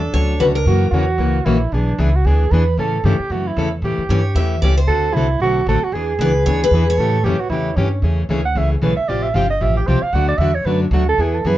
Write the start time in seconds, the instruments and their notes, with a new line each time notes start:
Already playing: upright bass E2, soprano saxophone D4, steel-string acoustic guitar A4
0.13 upright bass D2, steel-string acoustic guitar D3 F#3 A3 C#4 F#4 C#5
0.40 upright bass C#2, steel-string acoustic guitar D3 F#3 A3 C#4 F#4 B4
0.55 steel-string acoustic guitar A#4
0.65 upright bass F#2, steel-string acoustic guitar C#3 E3 A#3 C#4 F#4, soprano saxophone F#4
0.91 upright bass E2, steel-string acoustic guitar C#3 E3 A#3 C#4 F#4, soprano saxophone F#4
1.18 upright bass C#2, steel-string acoustic guitar C#3 E3 A#3 C#4 F#4
1.45 upright bass A#1, steel-string acoustic guitar C#3 E3 A#3 C#4 F#4, soprano saxophone E4
1.72 upright bass B1, steel-string acoustic guitar E3 B3 D4 G#4, soprano saxophone D4
1.98 upright bass C#2, steel-string acoustic guitar E3 B3 D4 G#4, soprano saxophone E4
2.15 soprano saxophone F#4
2.25 upright bass D2, steel-string acoustic guitar E3 B3 D4 G#4, soprano saxophone G#4
2.51 upright bass E2, steel-string acoustic guitar E3 B3 D4 G#4, soprano saxophone B4
2.77 upright bass A2, steel-string acoustic guitar C#3 E3 A3 C#4 A4, soprano saxophone A4
3.04 upright bass G2, steel-string acoustic guitar C#3 E3 A3 C#4 A4, soprano saxophone G4
3.19 muted upright bass stroke
3.30 upright bass F#2, steel-string acoustic guitar C#3 E3 A3 C#4 A4, soprano saxophone F#4
3.47 soprano saxophone E4
3.57 upright bass E2, steel-string acoustic guitar C#3 E3 A3 C#4 A4
3.82 upright bass A2, steel-string acoustic guitar C#3 E3 A3 C#4 G4, soprano saxophone G4
3.98 muted upright bass stroke
4.09 upright bass G2, steel-string acoustic guitar C#3 E3 A3 C#4 G4 C#5
4.35 upright bass E2, steel-string acoustic guitar C#3 E3 A3 C#4 G4 E5
4.62 upright bass C#2, steel-string acoustic guitar C#3 E3 A3 C#4 G4 D5
4.78 steel-string acoustic guitar C5
4.87 upright bass D2, steel-string acoustic guitar D3 A3 C4 F#4 A4, soprano saxophone A4
5.13 upright bass C2, steel-string acoustic guitar D3 A3 C4 F#4 A4, soprano saxophone E4
5.40 upright bass B1, steel-string acoustic guitar D3 A3 C4 F#4 A4, soprano saxophone F#4
5.67 upright bass A1, steel-string acoustic guitar D3 A3 C4 F#4 A4, soprano saxophone A4
5.84 soprano saxophone F#4
5.92 upright bass E2, steel-string acoustic guitar E3 B3 D4 G#4, soprano saxophone G#4
6.19 upright bass C#2, steel-string acoustic guitar E3 B3 D4 G#4 B4
6.46 upright bass D2, steel-string acoustic guitar E3 B3 D4 G#4 C#5
6.64 steel-string acoustic guitar B4
6.71 upright bass E2, steel-string acoustic guitar E3 B3 D4
6.75 steel-string acoustic guitar G#4
6.90 steel-string acoustic guitar C#5
6.98 upright bass A2, steel-string acoustic guitar C#3 E3 A3 C#4 G4, soprano saxophone A4
7.24 upright bass F#2, steel-string acoustic guitar C#3 E3 A3 C#4 G4, soprano saxophone G4
7.39 soprano saxophone F#4, muted upright bass stroke
7.50 upright bass E2, steel-string acoustic guitar C#3 E3 A3 C#4 G4, soprano saxophone E4
7.76 upright bass G2, steel-string acoustic guitar C#3 E3 A3 C#4 G4, soprano saxophone C#4
8.02 upright bass E2, steel-string acoustic guitar C#3 E3 A3 C#4 G#4
8.29 upright bass D2, steel-string acoustic guitar C#3 E3 A3 C#4 G#4
8.45 soprano saxophone F#5
8.55 upright bass C#2, steel-string acoustic guitar C#3 E3 A3 C#4 G#4, soprano saxophone E5
8.72 soprano saxophone G#4
8.82 upright bass B1, steel-string acoustic guitar C#3 E3 A3 C#4 G#4, soprano saxophone B4
8.97 soprano saxophone E5
9.08 upright bass A1, steel-string acoustic guitar C3 F3 C4 F4 G4, soprano saxophone D5
9.23 soprano saxophone E5
9.34 upright bass G1, steel-string acoustic guitar C3 F3 C4 F4 G4, soprano saxophone F5
9.50 soprano saxophone D#5
9.61 upright bass A1, steel-string acoustic guitar C3 F3 C4 F4 G4, soprano saxophone E5
9.77 soprano saxophone G4
9.87 upright bass C2, steel-string acoustic guitar C3 F3 C4 F4 G4, soprano saxophone C5
10.02 soprano saxophone F5, muted upright bass stroke
10.13 upright bass D2, steel-string acoustic guitar D3 F#3 A3 D4 F#4, soprano saxophone F#5
10.28 soprano saxophone D5
10.38 upright bass E2, steel-string acoustic guitar D3 F#3 A3 D4 F#4, soprano saxophone E5
10.55 soprano saxophone C#5
10.65 upright bass F#2, steel-string acoustic guitar D3 F#3 A3 D4 F#4, soprano saxophone B4
10.82 soprano saxophone D4
10.91 upright bass D2, steel-string acoustic guitar D3 F#3 A3 D4 F#4, soprano saxophone F#4
11.09 soprano saxophone A4
11.18 upright bass E2, steel-string acoustic guitar E3 B3 E4 G#4, soprano saxophone G#4
11.34 soprano saxophone A4
11.44 upright bass F#2, steel-string acoustic guitar E3 B3 E4 G#4, soprano saxophone B4